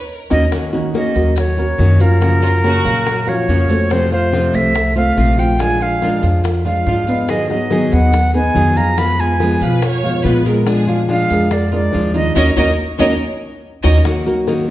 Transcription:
0.10 A#4
0.30 D#2 A#3 C#4 D#4 F#4 D#5, low bongo, maracas
0.51 D#3 A#3 C#4 F#4, high bongo, maracas
0.73 D#3 A#3 C#4 D#4 F#4 D#5, high bongo, maracas
0.94 D#3 A#3 C#4 F#4 D#5, high bongo, maracas
1.15 D#2 F#3 F#4 A#4, high bongo, maracas
1.36 C#5, muted nylon-string guitar stroke, high bongo, maracas
1.57 F#3 A#3 C#4 F#4 A#4, high bongo, maracas
1.78 F#2 D#3 A#3 C#4 F#4, high bongo, low bongo, maracas
2.00 F3 A#3 C#4 F4 F#4 A#4 F5, maracas
2.21 C#3 F3 A#3 C#4 F4 F#4 F5, high bongo, maracas
2.42 A#3 C#4 F4 F#4, high bongo, maracas
2.64 C#3 A#3 C#4 F#4 A#4 C#5, high bongo, maracas
2.84 A#2 F#3 F5, high bongo, maracas
3.06 muted nylon-string guitar stroke, high bongo, maracas
3.27 F3 A#3 C#4 F4 F#4 C#5 F5, high bongo, maracas
3.48 F2 C#3 F3 A#3 C#4 F#4, high bongo, low bongo, maracas
3.69 A3 A#3 C#4 F#4 A4 C5, maracas
3.90 C3 F3 A3 C4 F4 C5, high bongo, maracas
4.11 F3 A3 C4 F4 C5 F5, high bongo, maracas
4.32 C3 F3 A3 C4 F4, high bongo, maracas
4.53 C2 A3 A4 C5 E5, high bongo, maracas
4.74 muted nylon-string guitar stroke, high bongo, maracas
4.96 A3 C4 F4 A4 C5 F5, high bongo, maracas
5.17 A#1 C3 F3 A3 C4 F4, high bongo, low bongo, maracas
5.38 F3 A3 C4 F4 F5 G5, maracas
5.59 F3 G#3 D4 F4 F5 G#5, high bongo, maracas
5.80 G#3 D4 F4 F5, high bongo, maracas
6.02 F3 G#3 D4 F4 G#4 A#4, high bongo, maracas
6.22 F2 F3 F4 F5, high bongo, maracas
6.44 muted nylon-string guitar stroke, high bongo, maracas
6.65 F3 G#3 D4 F4 F5, high bongo, maracas
6.86 G#2 F3 G#3 D4 F4, high bongo, low bongo, maracas
7.07 G#3 B3 D4 F4 B4 D#5, maracas
7.28 D#3 F#3 B3 D#4 G#4 D#5, high bongo, maracas
7.49 F#3 B3 D#4 F#4 G#4 D#5 F#5, high bongo, maracas
7.70 D#3 F#3 B3 D#4 G#4, high bongo, maracas
7.92 D#2 B3 B4 D#5 F#5, high bongo, maracas
8.13 muted nylon-string guitar stroke, high bongo, maracas
8.34 B3 D#4 G#4 B4 D#5 G#5, high bongo, maracas
8.54 F2 D#3 F#3 B3 D#4 G#4, high bongo, low bongo, maracas
8.76 F3 B3 D#4 F4 G#4 F5 A#5, maracas
8.97 F3 G#3 B3 F4 F5 B5, high bongo, maracas
9.19 G#3 B3 F4 G#5, high bongo, maracas
9.40 F3 G#3 B3 F4 G#4 B4, high bongo, maracas
9.61 B2 F3 F4 B4 F5, high bongo, maracas
9.82 C#5, muted nylon-string guitar stroke, high bongo, maracas
10.03 F3 G#3 B3 F4 F5, high bongo, maracas
10.24 A#2 F3 G#3 B3 F4 B4, high bongo, low bongo, maracas
10.45 G#3 B3 F4 G#4 A#4, maracas
10.66 F3 G#3 D4 F4 G#4, high bongo, maracas
10.87 F3 G#3 D4 F4 F5, high bongo, maracas
11.08 F3 G#3 D4 F4 F5, high bongo, maracas
11.30 F2 G#3 G#4 A#4, high bongo, maracas
11.51 D5, muted nylon-string guitar stroke, high bongo, maracas
11.72 G#3 D4 F4 G#4 A#4 D5, high bongo, maracas
11.93 D#2 F3 G#3 D4 F4, high bongo, low bongo, maracas
12.14 D#3 G#3 D4 D#4 F4 D#5, maracas
12.35 D#2 A#3 C#4 D#4 F#4 A#4 C#5 D#5, low bongo, maracas
12.57 D#2 A#3 C#4 D#4 F#4 A#4 C#5 D#5, low bongo, maracas
12.99 D#2 A#3 C#4 D#4 F#4 A#4 C#5 D#5, low bongo, maracas
13.83 D#2 A#3 C#4 D#4 F#4 A#4 C#5 D#5, low bongo, maracas
14.05 D#3 A#3 D#4 F#4, high bongo, maracas
14.26 F#3 A#3 D#4 F#4 A#4, maracas
14.47 D#3 A#3 D#4 F#4, high bongo, maracas

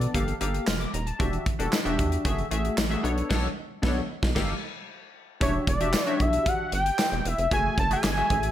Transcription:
Already playing: B3 D4 A4 D5
0.01 closed hi-hat
0.14 G1 A#3 G4 A4 F5, kick, closed hi-hat
0.28 closed hi-hat
0.41 G1 A#3 G4 A4 F5, closed hi-hat
0.54 closed hi-hat
0.67 F1 F6, snare, clap, tambourine
0.80 D6, closed hi-hat
0.94 D#1 A#5, closed hi-hat
1.07 A5, closed hi-hat
1.19 E1 D4 F#4 G4 E5, kick, closed hi-hat
1.33 closed hi-hat
1.46 kick, closed hi-hat
1.59 E1 D4 F#4 G4 A4, closed hi-hat
1.73 snare, clap, tambourine
1.85 E1 D4 F#4 G4 E5, closed hi-hat
1.99 E2, kick, closed hi-hat
2.12 closed hi-hat
2.25 F#1 A3 F#4 G#4 E5, kick, closed hi-hat
2.39 closed hi-hat
2.51 A1 A3 F#4 G#4 E5, closed hi-hat
2.65 closed hi-hat
2.78 A1, snare, clap, tambourine
2.90 A3 F#4 G#4 E5, closed hi-hat
3.03 B1 B3 D4 A4 C#5, closed hi-hat
3.18 closed hi-hat
3.29 B1 B3 D4 A4 C#5, kick, snare, crash
3.82 B1 B3 D4 A4 C#5, kick, snare
4.23 B1, kick, snare
4.35 G1 A#3 G4 A4 F5, kick, snare, crash
5.40 E1 D4 F#4 G4 C#5 E5, kick, closed hi-hat
5.67 E1 D5, kick, closed hi-hat
5.80 D4 F#4 G4 E5, closed hi-hat
5.93 snare, clap, tambourine
6.04 D4 F#4 G4 C#5 E5, closed hi-hat
6.20 B1 E5, kick, closed hi-hat
6.33 closed hi-hat
6.46 F#5, kick, closed hi-hat
6.72 G1 G5, closed hi-hat
6.86 closed hi-hat
6.99 snare, clap, tambourine
7.12 E1, closed hi-hat
7.25 E1 E5, closed hi-hat
7.38 F1, closed hi-hat
7.51 F#1 A3 F#4 G#4 E5 G#5, kick, closed hi-hat
7.78 F#1 A5, kick, closed hi-hat
7.91 A3 F#4 G#4 E5 G#5, closed hi-hat
8.04 G1, snare, clap, tambourine
8.17 A3 F#4 G#4 E5, closed hi-hat
8.30 A1, kick, closed hi-hat
8.43 closed hi-hat

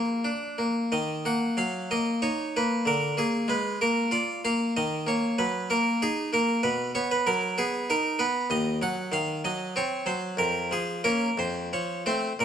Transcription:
Already playing: A#3
0.24 D4
0.58 A#3
0.92 D#3 D#5
1.25 A#3 F#5
1.57 F#3 F5
1.91 A#3 D#5
2.22 D#4 C#5
2.56 A#3 B4
2.85 D3 A#4
3.17 A#3 G#4
3.48 G#3 B4
3.81 A#3 A#4
4.11 F4 D5
4.45 A#3 F5
4.77 D#3 D#5
5.07 A#3 C#5
5.38 F#3 B4
5.70 A#3 A#4
6.02 D#4 G#4
6.33 A#3 A#4
6.63 B2 B4
6.95 B3 C#5
7.11 B4
7.27 F#3 A#4
7.58 B3 G#4
7.90 D#4 A#4
8.19 B3 B4
8.50 D#2 D#5
8.82 F#3 F#5
9.12 D#3 F5
9.45 F#3 D#5
9.76 C4 C#5
10.06 F#3 C5
10.37 F2 A#4
10.71 F3 G#4
11.04 A#3 C#4 A#4
11.38 F2 C5
11.73 F3 C#5
12.06 A3 C4 C5
12.39 A#2 A#4

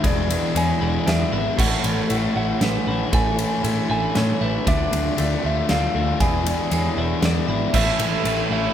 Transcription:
Already playing: D4 E4
0.02 E1 E2 E3 G#3 B3 E4 G#4 D5, kick, ride
0.07 D5
0.29 E3 G#3 B3 E4, ride
0.54 E2 E3 G#3 B3 E4 C#5 G#5, ride
0.79 E1 E3 G#3 B3 E4 D5
1.05 E2 E3 G#3 B3 D4 E4, snare, ride
1.09 E5
1.30 G#1 E3 G#3 B3 E4 E5
1.56 A1 A2 E3 A3 C#4 E4 A4 C#5 F#5, kick, crash
1.82 A1 A2 E3 A3 C#4 E4 A4, ride
2.08 A1 A2 E3 A3 C#4 E4, ride
2.34 A1 A2 E3 A3 C#4 E4 C#5 F#5
2.60 A1 A2 E3 A3 C#4 E4 B4 F#5, snare, ride
2.86 A1 A2 E3 A3 C#4 E4
3.12 A1 A2 E3 A3 C#4 E4 A4 G#5, kick, ride
3.37 A2 E3 A3 C#4 E4, ride
3.63 A2 E3 A3 C#4 E4 G#4, ride
3.88 A1 A2 E3 A3 C#4 E4 A4 G#5
4.13 A2 E3 A3 C#4 E4 C#5, snare, ride
4.39 A1 A2 E3 A3 C#4 E4 B4
4.65 D2 D3 A3 D4 F4 D5 E5, kick, ride
4.91 D2 D3 A3 D4 F4 D5, ride
5.17 D2 D3 A3 D4 F4, ride
5.42 D2 D3 A3 D4 F4 E5 F5
5.68 D2 D3 A3 D4 F4 F5 E6, snare, ride
5.94 D2 D3 A3 D4 E4 F4
6.19 E1 E2 E3 G#3 B3 E4 G#4 D5 G#5, kick, ride
6.45 E3 G#3 B3 E4, ride
6.71 E2 E3 G#3 B3 E4 C#5, ride
6.96 E1 E3 G#3 B3 E4 D5
7.21 E2 E3 G#3 B3 D4 E4 D5, snare, ride
7.48 G#1 E3 G#3 B3 E4 E5
7.72 A1 A2 E3 A3 C#4 E4 A4 E5, kick, crash
7.98 A1 A2 E3 A3 C#4 E4 A4, ride
8.24 A1 A2 E3 A3 C#4 E4, ride
8.49 A1 A2 E3 A3 C#4 E4 C#5 E5

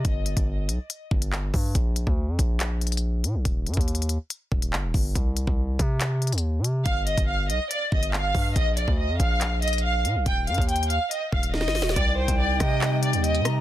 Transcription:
0.05 G1, kick, closed hi-hat
0.26 closed hi-hat
0.37 G1, kick, closed hi-hat
0.69 B1, closed hi-hat
0.90 closed hi-hat
1.11 G1, kick
1.22 closed hi-hat
1.33 clap
1.54 G2, kick, open hi-hat
1.75 A#1, kick, closed hi-hat
1.96 closed hi-hat
2.07 D2, kick
2.28 F2
2.39 A#1, kick, closed hi-hat
2.60 clap, closed hi-hat
2.81 closed hi-hat
2.87 closed hi-hat
2.92 closed hi-hat
2.97 closed hi-hat
3.24 A#2, closed hi-hat
3.35 A#1
3.45 D#1, kick, closed hi-hat
3.67 G2, closed hi-hat
3.74 D#2, kick, closed hi-hat
3.81 closed hi-hat
3.88 closed hi-hat
3.95 closed hi-hat
4.02 closed hi-hat
4.09 closed hi-hat
4.30 closed hi-hat
4.52 D#1, kick
4.62 closed hi-hat
4.73 G1, clap
4.84 D#1
4.94 G1, kick, open hi-hat
5.15 C2, kick, closed hi-hat
5.37 closed hi-hat
5.47 C2, kick
5.79 C3, kick, closed hi-hat
6.01 clap, closed hi-hat
6.22 closed hi-hat
6.27 closed hi-hat
6.32 D#2, closed hi-hat
6.38 closed hi-hat
6.59 C3
6.64 closed hi-hat
6.86 G1 F5, kick, closed hi-hat
7.07 D#5, closed hi-hat
7.18 G1, kick, closed hi-hat
7.28 F5
7.49 B1 D#5, closed hi-hat
7.71 D5, closed hi-hat
7.92 G1 D#5, kick
8.03 closed hi-hat
8.13 F5, clap
8.35 G2, kick, open hi-hat
8.56 A#1 D#5, kick, closed hi-hat
8.77 D5, closed hi-hat
8.88 D2, kick
8.98 D#5
9.09 F2
9.20 A#1 F5, kick, closed hi-hat
9.41 clap, closed hi-hat
9.62 D#5, closed hi-hat
9.68 closed hi-hat
9.73 closed hi-hat
9.78 closed hi-hat
9.84 F5
10.05 A#2, closed hi-hat
10.15 A#1
10.26 D#1 G5, kick, closed hi-hat
10.47 G2 F5, closed hi-hat
10.54 D#2, kick, closed hi-hat
10.62 closed hi-hat
10.69 G5, closed hi-hat
10.76 closed hi-hat
10.83 closed hi-hat
10.90 F5, closed hi-hat
11.11 D#5, closed hi-hat
11.32 D#1 F5, kick
11.43 closed hi-hat
11.54 D#5, snare
11.61 G1, snare
11.68 snare
11.75 snare, open hi-hat
11.80 D#1, snare
11.89 snare
11.96 C2 C3 G3 D#4 D5 G5, kick, closed hi-hat
12.18 C5
12.28 C2, kick, closed hi-hat
12.39 D5
12.60 C3 D#5, kick, cross-stick, closed hi-hat
12.81 clap
13.03 D5, closed hi-hat
13.13 D#2, closed hi-hat
13.24 D#5, closed hi-hat
13.35 closed hi-hat
13.40 C3
13.45 A#5, cross-stick, closed hi-hat

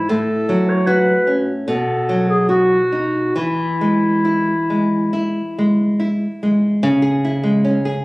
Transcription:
Already playing: E4
0.09 A2 A4
0.49 F#3
0.69 C#5
0.87 F#4 B4
1.27 C#4
1.66 B2 A4
2.09 F#3
2.29 G#4
2.49 F#4
2.92 D#4
3.36 E3 E4
3.81 G#3
4.25 E4
4.70 G#3
5.13 E4
5.58 G#3
6.00 E4
6.43 G#3
6.83 C#3
7.02 G#4
7.25 E4
7.43 G#3
7.65 C#4
7.85 G#4

